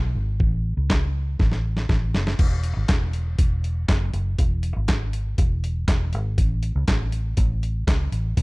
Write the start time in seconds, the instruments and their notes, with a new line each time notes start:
Already playing: fingered electric bass B1
0.15 fingered electric bass G#1
0.40 fingered electric bass A1, kick
0.77 fingered electric bass C#2
0.90 kick, snare, clap
1.39 fingered electric bass A1, kick, snare
1.52 snare
1.77 snare
1.89 fingered electric bass A1, kick, snare
2.14 fingered electric bass F#1, snare
2.27 snare
2.39 fingered electric bass E1, kick, crash
2.63 closed hi-hat
2.77 fingered electric bass G#1
2.88 fingered electric bass E1, kick, snare, clap, closed hi-hat
3.13 closed hi-hat
3.38 fingered electric bass E1, kick, closed hi-hat
3.64 closed hi-hat
3.89 fingered electric bass F#1, kick, snare, clap, closed hi-hat
4.13 fingered electric bass F#1, closed hi-hat
4.39 fingered electric bass E1, kick, closed hi-hat
4.63 closed hi-hat
4.76 fingered electric bass G#1
4.88 kick, snare, clap, closed hi-hat
5.13 closed hi-hat
5.38 fingered electric bass E1, kick, closed hi-hat
5.64 closed hi-hat
5.88 fingered electric bass E1, kick, snare, clap, closed hi-hat
6.13 fingered electric bass G#1, closed hi-hat
6.38 fingered electric bass A1, kick, closed hi-hat
6.63 closed hi-hat
6.75 fingered electric bass C#2
6.88 fingered electric bass A1, kick, snare, clap, closed hi-hat
7.12 closed hi-hat
7.37 fingered electric bass A1, kick, closed hi-hat
7.63 closed hi-hat
7.87 fingered electric bass C#2, kick, snare, clap, closed hi-hat
8.12 fingered electric bass A1, closed hi-hat
8.37 fingered electric bass B1, kick, closed hi-hat